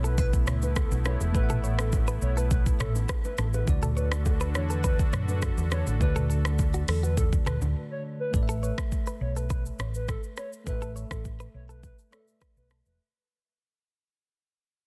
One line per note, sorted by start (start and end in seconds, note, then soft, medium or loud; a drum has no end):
0.00 0.47 B1 medium
0.00 1.29 A3 medium
0.00 3.64 A3 medium
0.00 3.63 B3 medium
0.00 3.63 E4 loud
0.00 1.30 A4 medium
0.00 1.34 B4 medium
0.00 1.32 E5 medium
0.04 0.18 A4 medium
0.04 0.17 B4 medium
0.04 shaker medium
0.18 0.26 B4 medium
0.18 0.31 B4 medium
0.18 kick loud
0.18 low conga medium
0.18 shaker medium
0.33 kick medium
0.33 shaker medium
0.47 0.83 C#2 medium
0.47 0.55 C#5 medium
0.47 cross-stick loud
0.47 mid tom loud
0.47 shaker medium
0.62 0.75 B4 medium
0.62 low bongo medium
0.62 shaker medium
0.76 0.90 A4 medium
0.76 kick loud
0.76 cross-stick loud
0.76 high bongo medium
0.76 shaker medium
0.91 1.15 B1 medium
0.91 low bongo medium
0.91 shaker medium
1.05 1.14 B4 medium
1.05 1.19 C#5 medium
1.05 cross-stick medium
1.05 high bongo medium
1.05 low bongo medium
1.05 shaker medium
1.20 1.32 E1 medium
1.20 high bongo medium
1.20 shaker medium
1.32 2.18 A1 loud
1.32 3.62 A3 medium
1.32 3.63 A4 medium
1.32 1.60 B4 loud
1.32 3.64 B4 medium
1.32 kick loud
1.32 low conga medium
1.32 shaker medium
1.37 1.43 E5 medium
1.44 3.68 F#5 medium
1.50 1.57 A4 medium
1.50 mid tom medium
1.50 shaker medium
1.64 1.72 C#5 medium
1.64 shaker soft
1.79 1.91 A4 medium
1.79 cross-stick loud
1.79 low bongo medium
1.79 shaker medium
1.92 kick loud
1.92 high bongo medium
1.92 low conga medium
1.92 shaker medium
2.07 2.16 B4 medium
2.07 shaker soft
2.22 2.69 B1 loud
2.22 2.35 C#5 medium
2.22 shaker medium
2.37 2.45 A4 medium
2.37 2.49 B4 medium
2.37 shaker medium
2.51 2.64 B4 medium
2.51 kick loud
2.51 low conga medium
2.51 shaker medium
2.66 kick loud
2.66 shaker medium
2.80 3.04 A1 medium
2.80 2.93 A4 medium
2.80 2.88 C#5 medium
2.80 cross-stick loud
2.80 mid tom medium
2.80 shaker medium
2.95 low bongo medium
2.95 shaker medium
3.09 3.18 B4 medium
3.09 kick loud
3.09 cross-stick loud
3.09 high bongo medium
3.09 shaker medium
3.24 3.36 B4 medium
3.24 low bongo medium
3.24 shaker medium
3.38 3.62 A1 medium
3.38 3.47 A4 medium
3.38 cross-stick medium
3.38 high bongo medium
3.38 low bongo medium
3.38 shaker medium
3.54 3.66 B4 medium
3.54 high bongo medium
3.54 shaker medium
3.65 4.55 D2 loud
3.65 5.95 D3 medium
3.65 8.30 D3 medium
3.65 5.96 A3 medium
3.65 8.30 D4 medium
3.65 8.30 F#4 medium
3.65 5.97 F#4 medium
3.65 8.30 A4 medium
3.65 kick loud
3.65 low conga medium
3.65 shaker medium
3.70 5.98 D5 medium
3.83 3.90 A4 medium
3.83 mid tom medium
3.83 shaker medium
3.96 4.09 B4 medium
3.96 4.05 C#5 medium
3.96 shaker medium
4.12 cross-stick loud
4.12 low bongo medium
4.12 shaker medium
4.25 kick medium
4.25 high bongo medium
4.25 low conga medium
4.25 shaker medium
4.40 4.48 B4 medium
4.40 shaker medium
4.55 5.02 E2 loud
4.55 4.68 C#5 medium
4.55 cross-stick medium
4.55 shaker medium
4.70 4.78 A4 medium
4.70 4.82 B4 medium
4.70 shaker medium
4.84 4.92 B4 medium
4.84 4.97 B4 loud
4.84 kick loud
4.84 low conga medium
4.84 shaker medium
4.99 kick loud
4.99 shaker medium
5.13 5.49 F#2 medium
5.13 5.21 C#5 medium
5.13 cross-stick loud
5.13 mid tom loud
5.13 shaker medium
5.28 5.41 B4 medium
5.28 low bongo medium
5.28 shaker medium
5.42 5.55 A4 medium
5.42 kick loud
5.42 cross-stick loud
5.42 high bongo medium
5.42 shaker medium
5.58 5.81 E2 loud
5.58 low bongo medium
5.58 shaker soft
5.71 5.80 B4 medium
5.71 5.85 C#5 medium
5.71 cross-stick loud
5.71 high bongo medium
5.71 low bongo medium
5.71 shaker medium
5.87 5.98 A1 loud
5.87 high bongo medium
5.87 shaker medium
5.98 6.84 D2 loud
5.98 8.29 D3 medium
5.98 8.29 A3 medium
5.98 8.30 F#4 medium
5.98 6.26 B4 loud
5.98 kick loud
5.98 low conga medium
5.98 shaker medium
6.03 8.31 D5 medium
6.16 6.23 A4 medium
6.16 mid tom medium
6.16 shaker medium
6.30 6.38 A4 medium
6.30 shaker medium
6.45 6.57 A4 medium
6.45 cross-stick loud
6.45 low bongo medium
6.45 shaker medium
6.59 kick loud
6.59 high bongo medium
6.59 low conga medium
6.59 shaker medium
6.74 6.82 F#4 medium
6.74 shaker medium
6.88 7.35 E2 loud
6.88 7.01 A4 medium
6.88 cross-stick loud
6.88 open hi-hat medium
6.88 shaker medium
7.03 7.11 F#4 medium
7.03 7.15 B4 medium
7.03 shaker medium
7.17 7.30 A4 medium
7.17 kick loud
7.17 low conga medium
7.17 shaker medium
7.33 kick loud
7.33 shaker medium
7.46 7.58 D2 medium
7.46 7.55 A4 medium
7.46 7.59 B4 medium
7.46 cross-stick loud
7.46 mid tom loud
7.46 shaker medium
7.61 7.73 D2 medium
7.61 low bongo medium
7.61 shaker medium
7.91 8.03 C#5 medium
8.20 8.32 B4 medium
8.31 8.70 A1 loud
8.31 10.61 A3 medium
8.31 10.62 A4 medium
8.31 10.63 B4 medium
8.31 kick loud
8.31 shaker medium
8.36 8.42 D5 medium
8.43 10.67 E5 medium
8.49 8.56 A4 medium
8.49 shaker medium
8.63 8.76 B4 medium
8.63 8.71 C#5 medium
8.63 shaker soft
8.78 kick loud
8.78 cross-stick loud
8.78 shaker medium
8.92 kick loud
8.92 shaker medium
9.07 9.15 B4 medium
9.07 shaker soft
9.21 9.68 B1 medium
9.21 9.34 C#5 medium
9.37 9.44 A4 medium
9.37 9.48 B4 medium
9.37 shaker soft
9.50 9.59 B4 medium
9.50 9.63 B4 medium
9.50 kick loud
9.50 shaker medium
9.66 shaker medium
9.79 10.15 A1 medium
9.79 9.88 C#5 medium
9.79 cross-stick loud
9.79 shaker medium
9.94 10.07 B4 medium
9.94 shaker medium
10.08 10.21 A4 medium
10.08 kick loud
10.08 cross-stick loud
10.08 shaker medium
10.23 shaker soft
10.37 10.46 B4 medium
10.37 10.50 C#5 medium
10.37 cross-stick medium
10.37 shaker medium
10.53 shaker medium
10.64 11.03 A1 loud
10.64 12.08 A3 medium
10.64 12.09 A4 medium
10.64 10.92 B4 loud
10.64 12.10 B4 medium
10.64 kick loud
10.64 shaker medium
10.69 12.11 E5 medium
10.82 10.90 A4 medium
10.82 shaker medium
10.96 11.04 C#5 medium
10.96 shaker soft
11.11 11.46 A1 medium
11.11 11.23 A4 medium
11.11 kick loud
11.11 cross-stick loud
11.11 shaker medium
11.25 kick medium
11.25 shaker medium
11.40 11.48 B4 medium
11.40 shaker soft
11.54 11.90 B1 medium
11.54 11.67 C#5 medium
11.69 11.77 A4 medium
11.69 11.81 B4 medium
11.69 shaker soft
11.83 11.96 B4 medium
11.83 kick loud
11.83 shaker medium
11.99 shaker medium
12.11 12.99 A3 soft
12.11 12.99 A4 soft
12.11 12.25 A4 medium
12.11 13.00 B4 soft
12.11 12.21 C#5 medium
12.11 12.20 D5 soft
12.11 cross-stick loud
12.11 shaker medium
12.20 13.04 E5 medium
12.28 shaker soft
12.41 12.50 B4 medium
12.41 kick loud
12.41 cross-stick loud
12.41 shaker medium
12.57 12.80 B1 medium
12.57 12.69 B4 medium
12.57 shaker soft
12.70 12.79 A4 medium
12.70 cross-stick medium
12.70 shaker medium
12.86 12.97 E1 medium
12.86 12.98 B4 medium
12.86 shaker medium